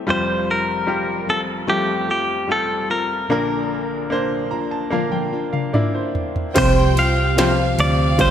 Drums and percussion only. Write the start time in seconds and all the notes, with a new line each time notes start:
4.93 high tom
5.13 high tom
5.53 mid tom
5.74 mid tom
6.15 floor tom
6.36 floor tom
6.56 kick, crash, ride
6.97 ride
7.38 snare, ride
7.79 ride
8.19 kick, ride